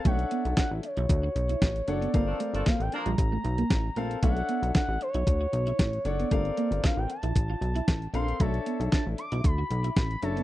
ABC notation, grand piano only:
X:1
M:4/4
L:1/8
Q:1/4=115
K:Bm
V:1 name="Grand piano"
[CDAce]3 z4 [DAcf] | [=CA_B=f]3 z4 [CABf] | [DAce]3 z4 [DAcf] | [=CA_B=f]3 z4 [CABf] |
[DAce]3 z4 [DAce] |]